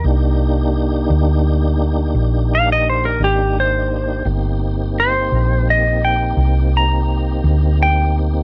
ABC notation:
X:1
M:12/8
L:1/16
Q:3/8=57
K:Cm
V:1 name="Electric slide guitar"
z12 z2 f e c B G2 c4 | z4 c4 e2 g4 b6 g2 z2 |]
V:2 name="Tonewheel organ"
[B,DEG]24 | [B,CEG]24 |]
V:3 name="Fingered electric bass" clef=bass
C,,6 D,,6 B,,,6 A,,,6 | G,,,6 B,,,6 C,,6 D,,6 |]